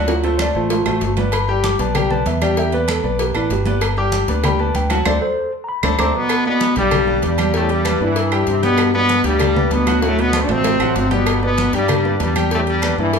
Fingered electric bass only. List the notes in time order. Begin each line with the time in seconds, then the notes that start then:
Already playing: D2
0.55 A1
0.86 A1
1.02 G1
1.79 B1
2.26 E2
3.04 B1
3.35 A1
3.50 G1
4.28 D2
4.74 D2
5.05 D2
5.83 D2
5.99 D2
6.77 B1
7.23 E2
8.00 G2
8.47 G2
9.24 D2
9.71 D2
10.49 A1
10.80 A1
10.95 G1
11.73 G2
12.20 E2
12.98 G2